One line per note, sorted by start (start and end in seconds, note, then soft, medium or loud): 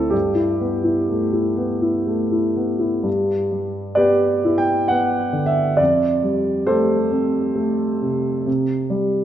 0.00 0.10 D2 soft
0.00 0.16 A3 soft
0.00 0.16 C4 soft
0.00 0.16 E4 soft
0.00 0.12 A4 medium
0.00 0.15 D5 medium
0.10 3.02 G2 soft
0.10 2.57 G4 soft
0.35 0.75 E4 soft
0.61 1.00 B3 soft
0.84 1.24 E4 soft
1.10 1.49 A3 soft
1.33 1.74 E4 soft
1.57 1.98 B3 soft
1.82 2.23 E4 soft
2.07 2.47 A3 soft
2.32 2.72 E4 soft
2.56 2.96 B3 soft
2.79 3.05 E4 soft
3.03 5.74 G2 soft
3.51 4.26 G3 soft
3.95 4.71 B3 soft
3.95 4.55 G4 soft
3.95 4.54 B4 soft
3.95 4.58 D5 medium
4.45 5.17 E4 soft
4.58 4.89 G5 medium
4.88 5.62 B3 soft
4.88 5.49 F#5 medium
5.33 5.79 D3 soft
5.46 5.78 E5 medium
5.77 8.42 F2 soft
5.77 6.67 D5 medium
6.23 6.94 G3 soft
6.67 7.39 A3 soft
6.67 7.97 G4 soft
6.67 7.97 A4 soft
6.67 8.01 C5 medium
7.12 7.83 C4 soft
7.55 8.28 A3 soft
8.02 8.45 C3 soft
8.46 9.24 C3 soft
8.90 9.24 G3 soft